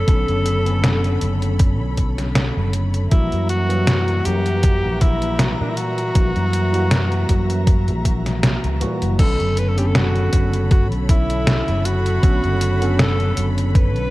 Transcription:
0.00 1.94 A4 loud
0.00 3.08 A4 medium
0.00 3.08 C#5 medium
0.00 3.08 B5 medium
0.07 0.24 B1 loud
0.07 0.61 D3 medium
0.07 0.62 B3 medium
0.07 0.62 C#4 medium
0.07 0.62 A4 medium
0.07 kick loud
0.07 closed hi-hat medium
0.28 1.16 F#1 medium
0.28 closed hi-hat soft
0.46 closed hi-hat medium
0.65 3.07 D3 medium
0.65 3.07 B3 medium
0.65 3.08 C#4 medium
0.65 3.08 A4 loud
0.65 closed hi-hat soft
0.84 snare loud
0.84 closed hi-hat medium
1.04 closed hi-hat soft
1.21 1.81 F#1 medium
1.21 closed hi-hat medium
1.42 closed hi-hat soft
1.59 kick loud
1.59 closed hi-hat medium
1.81 2.49 B1 medium
1.97 kick medium
1.97 closed hi-hat medium
2.18 snare soft
2.18 closed hi-hat medium
2.35 snare loud
2.35 closed hi-hat medium
2.57 3.06 F#1 medium
2.73 closed hi-hat medium
2.94 closed hi-hat soft
3.11 3.28 A#1 medium
3.11 3.65 E3 medium
3.11 9.15 E3 medium
3.11 3.65 G3 medium
3.11 3.65 A#3 medium
3.11 3.47 E4 loud
3.11 3.66 F#4 medium
3.11 9.15 E5 medium
3.11 6.12 F#5 medium
3.11 9.15 A#5 medium
3.11 kick loud
3.11 closed hi-hat medium
3.32 4.19 F#2 medium
3.32 closed hi-hat soft
3.49 4.27 F#4 loud
3.49 closed hi-hat medium
3.69 6.11 E3 loud
3.69 6.12 F#3 loud
3.69 6.11 G3 medium
3.69 6.12 A#3 medium
3.69 closed hi-hat medium
3.87 snare loud
3.87 closed hi-hat medium
4.08 closed hi-hat soft
4.25 4.86 F#2 medium
4.25 5.03 G4 loud
4.25 closed hi-hat medium
4.46 closed hi-hat medium
4.63 kick loud
4.63 closed hi-hat medium
4.84 5.53 A#1 medium
5.01 5.43 E4 loud
5.01 kick loud
5.01 closed hi-hat medium
5.22 closed hi-hat medium
5.39 5.53 F#4 medium
5.39 snare loud
5.39 closed hi-hat medium
5.52 5.63 E4 medium
5.60 6.09 A#2 medium
5.60 5.71 D4 medium
5.69 5.78 E4 medium
5.77 8.43 F#4 loud
5.77 closed hi-hat medium
5.98 closed hi-hat soft
6.14 6.31 A#1 loud
6.14 6.69 E3 medium
6.14 6.69 G3 medium
6.14 6.69 A#3 medium
6.14 6.70 F#4 medium
6.14 kick loud
6.14 closed hi-hat medium
6.36 7.23 F#2 medium
6.36 closed hi-hat soft
6.53 closed hi-hat medium
6.73 8.77 E3 medium
6.73 8.78 G3 medium
6.73 8.78 A#3 medium
6.73 8.79 F#4 loud
6.73 closed hi-hat medium
6.91 snare loud
6.91 closed hi-hat medium
7.12 closed hi-hat soft
7.29 7.89 F#2 medium
7.29 kick medium
7.29 closed hi-hat medium
7.50 closed hi-hat medium
7.67 kick loud
7.67 closed hi-hat medium
7.88 8.56 A#1 medium
7.88 closed hi-hat soft
8.05 kick medium
8.05 closed hi-hat medium
8.26 snare soft
8.26 closed hi-hat medium
8.43 snare loud
8.43 closed hi-hat medium
8.64 8.83 C#2 medium
8.64 closed hi-hat soft
8.80 8.97 A#2 medium
8.80 8.99 E3 medium
8.80 8.99 G3 medium
8.80 8.99 A#3 medium
8.80 9.00 F#4 loud
8.80 closed hi-hat medium
9.02 9.15 F#1 medium
9.02 closed hi-hat medium
9.18 9.35 B1 loud
9.18 9.72 D3 medium
9.18 9.73 B3 medium
9.18 9.73 C#4 medium
9.18 9.60 A4 loud
9.18 14.10 A4 medium
9.18 9.73 A4 medium
9.18 14.10 C#5 medium
9.18 14.10 B5 medium
9.18 kick loud
9.18 closed hi-hat medium
9.18 crash loud
9.40 10.27 F#1 medium
9.40 closed hi-hat soft
9.57 9.70 B4 medium
9.57 closed hi-hat medium
9.69 9.80 A4 medium
9.76 12.18 D3 medium
9.76 12.19 B3 medium
9.76 12.19 C#4 medium
9.76 9.88 G4 medium
9.76 12.20 A4 loud
9.76 closed hi-hat medium
9.87 9.95 A4 medium
9.95 10.67 F#4 medium
9.95 snare loud
9.95 closed hi-hat medium
10.16 closed hi-hat soft
10.33 10.92 F#1 loud
10.33 kick medium
10.33 closed hi-hat loud
10.53 closed hi-hat medium
10.71 10.88 F#4 medium
10.71 kick loud
10.71 closed hi-hat medium
10.92 11.60 B1 medium
10.92 closed hi-hat soft
11.09 11.87 E4 loud
11.09 kick loud
11.09 closed hi-hat loud
11.30 closed hi-hat medium
11.47 snare loud
11.47 closed hi-hat medium
11.68 12.17 F#1 medium
11.68 closed hi-hat soft
11.85 13.01 F#4 loud
11.85 closed hi-hat loud
12.06 closed hi-hat medium
12.22 12.39 B1 loud
12.22 12.77 D3 medium
12.22 12.77 B3 medium
12.22 12.77 C#4 medium
12.22 12.77 A4 medium
12.22 kick loud
12.22 closed hi-hat medium
12.44 13.31 F#1 medium
12.44 closed hi-hat soft
12.61 closed hi-hat loud
12.81 14.10 D3 medium
12.81 14.10 B3 medium
12.81 14.10 C#4 medium
12.81 14.10 A4 loud
12.81 closed hi-hat medium
12.99 13.49 A4 loud
12.99 snare loud
12.99 closed hi-hat medium
13.20 closed hi-hat soft
13.37 13.96 F#1 medium
13.37 closed hi-hat loud
13.58 closed hi-hat medium
13.75 14.10 B4 loud
13.75 kick loud
13.75 closed hi-hat medium
13.96 14.10 B1 medium
13.96 closed hi-hat soft

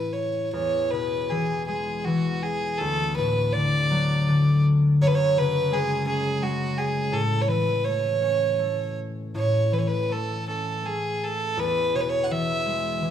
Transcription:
0.00 0.57 A2 medium
0.00 0.57 E3 soft
0.00 1.89 C#4 soft
0.00 1.98 E4 soft
0.00 0.14 B4 medium
0.12 0.52 C#5 medium
0.53 2.86 E2 soft
0.53 0.92 C#5 medium
0.91 2.86 B2 soft
0.91 1.31 B4 medium
1.30 2.06 E3 soft
1.30 1.66 G#4 medium
1.67 2.86 G#3 soft
1.67 2.06 G#4 medium
2.04 2.86 E3 soft
2.04 2.44 F#4 medium
2.42 2.79 G#4 medium
2.78 5.05 D2 medium
2.78 3.16 A4 medium
3.16 3.59 A2 soft
3.16 3.54 B4 medium
3.53 4.27 D3 soft
3.53 4.64 D5 medium
3.91 4.33 F#3 soft
4.29 5.05 D3 soft
5.01 7.17 F#2 medium
5.01 5.09 C#5 medium
5.07 5.16 B4 medium
5.15 5.39 C#5 medium
5.37 7.17 C#3 soft
5.37 5.75 B4 medium
5.71 6.41 G#3 medium
5.71 6.06 G#4 medium
6.06 8.21 C#4 medium
6.06 6.44 G#4 medium
6.42 7.17 G#3 medium
6.42 6.79 F#4 medium
6.78 7.15 G#4 medium
7.12 9.33 A2 medium
7.12 7.43 A4 medium
7.41 7.50 C#5 medium
7.47 9.71 E3 soft
7.47 7.86 B4 medium
7.84 8.59 A3 soft
7.84 8.99 C#5 medium
8.21 10.47 C#4 soft
8.60 10.09 A3 soft
9.35 11.63 A2 medium
9.35 9.75 C#5 medium
9.72 11.63 E3 soft
9.72 9.80 B4 medium
9.78 9.89 C#5 medium
9.87 10.13 B4 medium
10.09 10.85 A3 soft
10.09 10.47 A4 medium
10.48 13.11 C#4 soft
10.48 10.87 A4 medium
10.85 12.72 A3 soft
10.85 11.25 G#4 medium
11.24 11.61 A4 medium
11.57 13.11 E2 medium
11.57 11.97 B4 medium
11.94 13.11 B2 soft
11.94 12.02 C#5 medium
12.01 12.11 B4 medium
12.10 12.25 C#5 medium
12.23 12.33 F#5 medium
12.31 13.01 E3 soft
12.31 13.11 E5 medium
12.66 13.11 G#3 soft
13.02 13.11 E3 soft

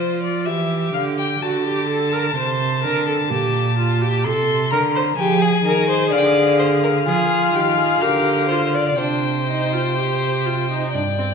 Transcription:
0.00 0.48 F3 medium
0.00 0.48 F4 medium
0.00 0.22 C5 medium
0.23 0.47 D5 medium
0.46 0.94 E3 medium
0.46 1.41 G4 medium
0.46 0.93 E5 medium
0.94 1.41 D3 medium
0.94 1.02 F5 medium
1.18 1.44 G5 medium
1.42 2.35 D3 medium
1.42 1.65 F#4 medium
1.42 4.25 A5 medium
1.65 1.88 G4 medium
1.89 2.14 A4 medium
2.12 2.36 A#4 medium
2.36 2.86 C3 medium
2.36 2.83 C5 medium
2.83 3.32 D3 medium
2.83 3.06 A#4 medium
3.07 3.15 A4 medium
3.31 4.27 A#2 medium
3.31 3.77 G4 medium
3.78 4.03 F4 medium
4.01 4.26 G4 medium
4.24 4.73 C3 medium
4.24 4.71 A4 medium
4.24 4.73 C6 medium
4.71 5.18 D3 medium
4.71 4.80 A#4 medium
4.71 5.17 A#5 medium
4.95 5.03 C5 medium
5.18 5.64 F3 medium
5.18 5.44 G4 medium
5.18 7.03 G#4 medium
5.18 6.13 G#5 medium
5.42 5.65 G#4 medium
5.65 6.14 D#3 medium
5.65 5.89 A#4 medium
5.90 6.11 C5 medium
6.12 7.08 D3 medium
6.12 6.58 D5 medium
6.12 6.20 F5 medium
6.18 6.27 G5 medium
6.26 8.98 F5 medium
6.59 6.67 C5 medium
6.84 6.92 A#4 medium
7.07 7.54 F3 medium
7.07 8.03 F4 medium
7.07 7.57 G#4 medium
7.55 8.01 D#3 medium
7.55 7.78 G4 medium
7.78 8.03 G#4 medium
8.02 8.97 D3 medium
8.02 8.52 G4 medium
8.02 8.48 A#4 medium
8.49 8.98 F4 medium
8.49 8.76 C5 medium
8.75 8.99 D5 medium
8.98 10.95 C3 medium
8.98 9.46 D4 medium
8.98 10.92 C5 medium
8.98 10.89 G5 medium
9.47 9.74 D#4 medium
9.72 9.96 F4 medium
9.97 10.47 G4 medium
10.45 10.69 F4 medium
10.69 10.93 D#4 medium
10.92 11.34 G2 medium
10.92 11.02 D4 medium
10.92 11.34 D5 medium
10.92 11.34 G5 medium
11.18 11.26 C4 medium

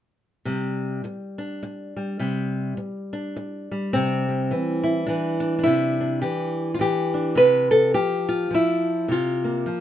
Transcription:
0.45 1.04 C3 medium
0.45 1.96 G3 medium
1.04 muted nylon-string guitar stroke medium
1.38 2.22 D4 soft
1.63 muted nylon-string guitar stroke medium
1.97 2.20 G3 medium
2.19 2.76 C3 medium
2.19 3.69 G3 soft
2.77 muted nylon-string guitar stroke soft
3.13 3.90 D4 soft
3.36 muted nylon-string guitar stroke medium
3.72 4.28 G3 medium
3.93 4.51 C3 medium
3.93 5.06 C4 loud
4.29 7.38 G3 soft
4.51 5.07 E3 soft
4.84 5.62 E4 medium
5.06 5.62 E3 medium
5.06 5.39 D4 medium
5.40 5.57 D4 medium
5.59 5.99 D4 medium
5.63 6.23 C3 medium
5.63 6.21 E4 medium
6.00 7.13 D4 soft
6.22 6.78 E3 medium
6.22 6.74 G4 medium
6.74 6.80 F4 medium
6.79 7.34 E3 medium
6.79 7.37 G4 medium
7.14 7.35 D4 soft
7.35 7.94 C3 medium
7.35 7.71 B4 loud
7.71 7.94 A4 loud
7.94 8.49 F3 medium
7.94 8.52 G4 medium
8.29 9.10 F4 medium
8.51 9.06 F3 medium
8.51 9.11 E4 medium
9.08 9.67 C3 medium
9.08 9.80 F4 medium
9.44 9.80 A#3 soft
9.66 9.80 F3 soft

